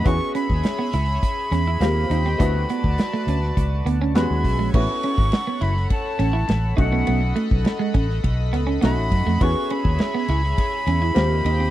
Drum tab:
CC |----------------|----------------|x---------------|----------------|
RD |----------------|----------------|--x-x-x-x-x-x-x-|x-x-x-x-x-x-x-x-|
HH |x-x-x-x-x-x-x-x-|x-x-x-x-x-x-x-o-|----------------|----------------|
SD |----o-o---o-o--o|----o--o----o---|----o-oo--o-o---|----o--o--o-o--o|
BD |o--o----o-------|o--o----o-----o-|o--o----o-----o-|---o--o-o-----o-|

CC |----------------|
RD |x-x-x-x-x-x-x-x-|
HH |----------------|
SD |----o-oo--o-o---|
BD |o--o----o-------|